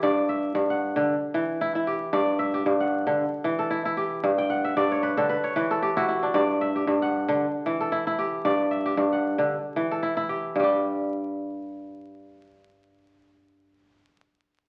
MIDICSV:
0, 0, Header, 1, 2, 480
1, 0, Start_track
1, 0, Tempo, 525394
1, 28, Time_signature, 4, 2, 24, 8
1, 13415, End_track
2, 0, Start_track
2, 0, Title_t, "Kora"
2, 0, Program_c, 0, 46
2, 0, Note_on_c, 0, 64, 88
2, 0, Note_on_c, 0, 67, 69
2, 0, Note_on_c, 0, 69, 60
2, 24, Note_on_c, 0, 74, 75
2, 26, Note_on_c, 0, 43, 87
2, 265, Note_on_c, 0, 76, 68
2, 490, Note_off_c, 0, 43, 0
2, 501, Note_on_c, 0, 43, 76
2, 640, Note_on_c, 0, 78, 58
2, 645, Note_off_c, 0, 69, 0
2, 695, Note_off_c, 0, 67, 0
2, 877, Note_on_c, 0, 50, 82
2, 1034, Note_off_c, 0, 43, 0
2, 1034, Note_off_c, 0, 50, 0
2, 1036, Note_off_c, 0, 74, 0
2, 1115, Note_off_c, 0, 64, 0
2, 1209, Note_off_c, 0, 76, 0
2, 1226, Note_on_c, 0, 52, 77
2, 1472, Note_on_c, 0, 64, 83
2, 1521, Note_off_c, 0, 78, 0
2, 1597, Note_off_c, 0, 64, 0
2, 1600, Note_on_c, 0, 64, 71
2, 1709, Note_on_c, 0, 67, 64
2, 1945, Note_on_c, 0, 43, 85
2, 1948, Note_on_c, 0, 74, 67
2, 1994, Note_off_c, 0, 52, 0
2, 2183, Note_on_c, 0, 76, 67
2, 2316, Note_off_c, 0, 67, 0
2, 2320, Note_on_c, 0, 67, 65
2, 2419, Note_off_c, 0, 43, 0
2, 2430, Note_on_c, 0, 43, 79
2, 2561, Note_on_c, 0, 78, 53
2, 2802, Note_on_c, 0, 50, 77
2, 2955, Note_off_c, 0, 43, 0
2, 2955, Note_off_c, 0, 50, 0
2, 2960, Note_off_c, 0, 74, 0
2, 3032, Note_off_c, 0, 64, 0
2, 3127, Note_off_c, 0, 76, 0
2, 3145, Note_on_c, 0, 52, 80
2, 3278, Note_on_c, 0, 69, 64
2, 3384, Note_on_c, 0, 64, 81
2, 3442, Note_off_c, 0, 78, 0
2, 3517, Note_off_c, 0, 64, 0
2, 3520, Note_on_c, 0, 64, 76
2, 3610, Note_off_c, 0, 67, 0
2, 3627, Note_on_c, 0, 67, 65
2, 3869, Note_on_c, 0, 43, 82
2, 3917, Note_off_c, 0, 52, 0
2, 4004, Note_on_c, 0, 79, 76
2, 4109, Note_on_c, 0, 78, 71
2, 4164, Note_off_c, 0, 67, 0
2, 4244, Note_on_c, 0, 76, 69
2, 4345, Note_off_c, 0, 43, 0
2, 4355, Note_on_c, 0, 43, 81
2, 4356, Note_on_c, 0, 74, 74
2, 4410, Note_off_c, 0, 78, 0
2, 4482, Note_off_c, 0, 69, 0
2, 4491, Note_on_c, 0, 73, 69
2, 4594, Note_on_c, 0, 71, 75
2, 4726, Note_on_c, 0, 50, 84
2, 4726, Note_on_c, 0, 69, 71
2, 4781, Note_off_c, 0, 73, 0
2, 4833, Note_off_c, 0, 71, 0
2, 4836, Note_on_c, 0, 71, 72
2, 4855, Note_off_c, 0, 79, 0
2, 4879, Note_off_c, 0, 43, 0
2, 4879, Note_off_c, 0, 50, 0
2, 4952, Note_off_c, 0, 64, 0
2, 4968, Note_on_c, 0, 73, 76
2, 5023, Note_off_c, 0, 74, 0
2, 5074, Note_off_c, 0, 71, 0
2, 5078, Note_on_c, 0, 52, 80
2, 5078, Note_on_c, 0, 71, 76
2, 5188, Note_off_c, 0, 76, 0
2, 5211, Note_off_c, 0, 69, 0
2, 5214, Note_on_c, 0, 69, 72
2, 5321, Note_on_c, 0, 67, 82
2, 5451, Note_on_c, 0, 64, 90
2, 5451, Note_on_c, 0, 66, 75
2, 5555, Note_off_c, 0, 64, 0
2, 5558, Note_on_c, 0, 64, 66
2, 5689, Note_on_c, 0, 62, 60
2, 5744, Note_off_c, 0, 73, 0
2, 5794, Note_on_c, 0, 43, 96
2, 5797, Note_on_c, 0, 74, 76
2, 5840, Note_off_c, 0, 52, 0
2, 5848, Note_off_c, 0, 66, 0
2, 6041, Note_on_c, 0, 76, 74
2, 6169, Note_off_c, 0, 67, 0
2, 6172, Note_on_c, 0, 67, 57
2, 6201, Note_off_c, 0, 71, 0
2, 6268, Note_off_c, 0, 43, 0
2, 6279, Note_on_c, 0, 43, 80
2, 6415, Note_on_c, 0, 78, 61
2, 6418, Note_off_c, 0, 69, 0
2, 6655, Note_on_c, 0, 50, 84
2, 6802, Note_off_c, 0, 43, 0
2, 6802, Note_off_c, 0, 50, 0
2, 6809, Note_off_c, 0, 74, 0
2, 6985, Note_off_c, 0, 76, 0
2, 6990, Note_off_c, 0, 64, 0
2, 6998, Note_on_c, 0, 52, 74
2, 7131, Note_on_c, 0, 69, 66
2, 7223, Note_off_c, 0, 62, 0
2, 7235, Note_on_c, 0, 64, 78
2, 7296, Note_off_c, 0, 78, 0
2, 7368, Note_off_c, 0, 64, 0
2, 7372, Note_on_c, 0, 64, 79
2, 7463, Note_off_c, 0, 67, 0
2, 7478, Note_on_c, 0, 67, 66
2, 7718, Note_on_c, 0, 43, 82
2, 7718, Note_on_c, 0, 74, 74
2, 7763, Note_off_c, 0, 52, 0
2, 7957, Note_on_c, 0, 76, 65
2, 8088, Note_off_c, 0, 67, 0
2, 8091, Note_on_c, 0, 67, 63
2, 8187, Note_off_c, 0, 43, 0
2, 8198, Note_on_c, 0, 43, 79
2, 8334, Note_off_c, 0, 69, 0
2, 8337, Note_on_c, 0, 78, 55
2, 8573, Note_on_c, 0, 50, 83
2, 8723, Note_off_c, 0, 43, 0
2, 8723, Note_off_c, 0, 50, 0
2, 8730, Note_off_c, 0, 74, 0
2, 8804, Note_off_c, 0, 64, 0
2, 8902, Note_off_c, 0, 76, 0
2, 8919, Note_on_c, 0, 52, 80
2, 9057, Note_on_c, 0, 69, 71
2, 9160, Note_on_c, 0, 64, 74
2, 9218, Note_off_c, 0, 78, 0
2, 9286, Note_off_c, 0, 64, 0
2, 9289, Note_on_c, 0, 64, 77
2, 9382, Note_off_c, 0, 67, 0
2, 9402, Note_on_c, 0, 67, 61
2, 9643, Note_on_c, 0, 43, 72
2, 9680, Note_on_c, 0, 55, 70
2, 9683, Note_off_c, 0, 52, 0
2, 9710, Note_off_c, 0, 67, 0
2, 9714, Note_on_c, 0, 67, 70
2, 10260, Note_off_c, 0, 69, 0
2, 10721, Note_off_c, 0, 64, 0
2, 12818, Note_off_c, 0, 43, 0
2, 12855, Note_off_c, 0, 55, 0
2, 12889, Note_off_c, 0, 67, 0
2, 13415, End_track
0, 0, End_of_file